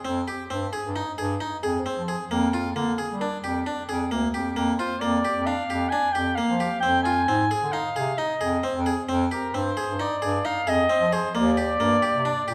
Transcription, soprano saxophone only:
4.79 C5
5.01 D5
5.46 F5
5.90 G#5
6.13 G5
6.35 F5
6.80 G5
7.03 G#5
7.72 F5
8.18 D#5
9.32 A#4
9.55 C5
10.00 D5
10.46 F5
10.69 D#5
11.13 C5
11.35 D5

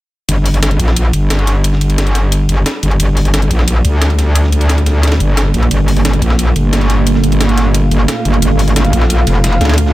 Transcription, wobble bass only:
0.29 G1
0.79 A#1
1.13 G1
2.49 G1
2.83 G1
3.00 G1
3.51 A#1
3.85 D2
5.20 G1
5.54 A#1
5.71 G1
6.22 A#1
6.56 G1
7.91 G1
8.25 G1
8.42 G1
8.93 A#1
9.27 F1
9.61 D2

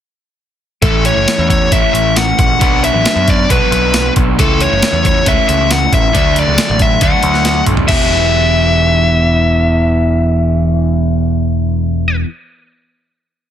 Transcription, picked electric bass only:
0.82 A1
1.15 F#1
1.39 E2
1.72 A1
1.93 A1
2.39 A#1
2.61 B1
2.94 A1
3.16 F#2
3.50 B1
3.71 B1
4.16 B1
4.39 C#2
4.71 F#1
4.93 E2
5.26 C#2
5.49 C#2
5.92 A1
6.14 D2
6.47 C#2
6.70 A1
7.01 D2
7.23 D2
7.66 B1
7.88 E1

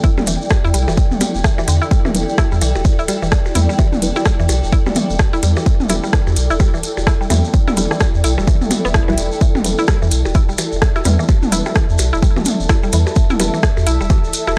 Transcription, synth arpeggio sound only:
0.04 E4
0.18 G3
0.27 E3
0.65 E4
0.74 G3
0.88 E3
1.21 G3
1.44 E3
1.58 E3
1.68 D3
1.82 E4
1.91 G3
2.05 E3
2.38 E4
2.52 G3
2.62 E3
2.99 E4
3.08 G3
3.22 E3
3.55 E4
3.69 G3
3.79 E3
4.16 E4
4.26 G3
4.40 E3
4.72 E4
4.86 G3
4.96 E3
5.33 E4
5.43 G3
5.57 E3
5.90 E4
6.04 G3
6.13 E3
6.50 E4
6.60 G3
6.74 E3
7.07 E4
7.21 G3
7.30 E3
7.68 E4
7.77 G3
7.91 E3
8.24 E4
8.38 G3
8.48 E3
8.85 B3
9.08 E3
9.41 E3
9.79 E4
9.88 G3
10.02 E3
10.35 E4
10.49 G3
10.58 E3
10.96 E4
11.05 G3
11.19 E3
11.52 E4
11.66 G3
11.75 E3
12.13 E4
12.22 G3
12.36 E3
12.69 E4
12.83 G3
12.93 E3
13.30 E4
13.40 G3
13.54 E3
13.87 E4
14.01 G3
14.10 E3
14.47 E4

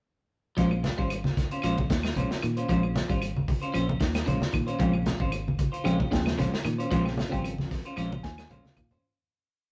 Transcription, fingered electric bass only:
0.58 A#1
0.98 G#1
1.64 A#1
1.90 D#2
2.16 A#1
2.43 A#2
2.70 A#1
3.10 G#1
3.75 A#1
4.01 D#2
4.27 A#1
4.53 A#2
4.80 A#1
5.20 G#1
5.86 A#1
6.13 D#2
6.39 A#1
6.65 A#2
6.92 A#1
7.33 G#1
7.97 A#1
8.24 D#2
8.50 A#1
8.77 A#2

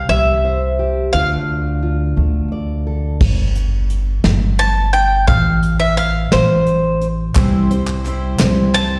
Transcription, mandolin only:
0.09 E5
1.13 F5
4.59 A5
4.93 G5
5.27 F5
5.80 E5
5.97 F5
6.32 C5
8.74 A5

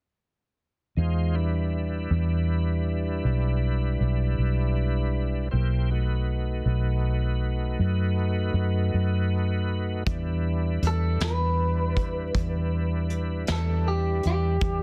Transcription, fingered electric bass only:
0.97 E2
2.11 E2
3.25 B1
4.00 B1
4.38 B1
5.53 B1
6.65 B1
7.79 F#2
8.54 F#2
8.94 F#2
10.07 E2
10.82 E2
11.21 E2
12.35 E2
13.49 E2
14.25 E2
14.62 E2

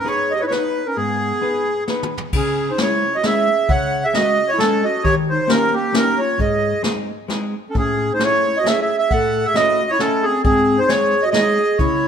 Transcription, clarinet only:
0.09 G#4
0.34 G4
0.43 D#4 E4
0.50 E4
0.55 D#4
0.88 C#4
0.98 B3
2.36 C#4
2.71 D#4
2.81 E4
3.16 F#4
3.24 G#4
3.71 C#5
4.05 G#4
4.16 F#4
4.53 E4
4.62 C#4
4.84 F#4
5.05 G4
5.30 D#4
5.50 C#4
5.75 A#3
5.95 C#4
6.21 F4
6.40 G#4
7.70 C#4
7.78 C#4
8.14 D#4
8.25 E4
8.59 F#4
8.69 G#4
8.82 G#4
8.99 G#4
9.13 A4
9.47 G#4
9.58 F#4
9.91 E4
10.00 C#4
10.26 C4
10.45 C4
10.79 D#4
10.90 G#4
11.25 F#4
11.35 G#4
11.80 E4

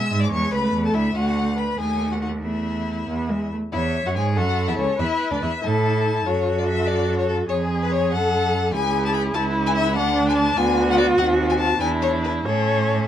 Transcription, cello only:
0.11 G#2
0.32 E2
0.53 C#2
0.73 E2
0.94 D2
1.15 D2
1.79 D#2
2.44 E2
3.09 E2
3.73 E2
4.05 F#2
4.15 G#2
4.36 F#2
4.68 E2
4.78 C#2
4.99 E2
5.32 D2
5.42 E2
5.63 A2
6.26 F#2
7.49 F2
8.13 F#2
8.73 C#2
9.35 C#2
9.96 D2
10.57 D2
11.18 D#2
11.81 E2
12.46 A2

